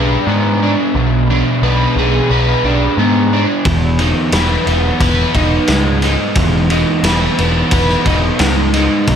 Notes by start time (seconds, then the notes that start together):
Already playing: B1 B3 D4 G#4 B4
0.27 G#2 B3
0.62 D4
0.95 B1 B2
1.30 D4
1.62 B1 B4
1.96 B1 G#4
2.30 B1 B4
2.64 B1 D4
2.97 G#2 B3
3.33 D4
3.65 E1 E2, kick, ride
3.99 D#4, ride
4.32 E1 B4, snare, ride
4.67 E1 B3, ride
5.00 E1 B4, kick, ride
5.35 E1 D#4, kick, ride
5.68 C#2 G#3, snare, ride
6.02 D#4, snare, ride
6.35 E1 E2, kick, ride
6.70 D#4, ride
7.03 E1 B4, snare, ride
7.39 E1 B3, ride
7.71 E1 B4, kick, ride
7.89 snare
8.06 E1 D#4, kick, ride
8.39 C#2 G#3, snare, ride
8.74 D#4, snare, ride
9.07 B1 B2, kick, ride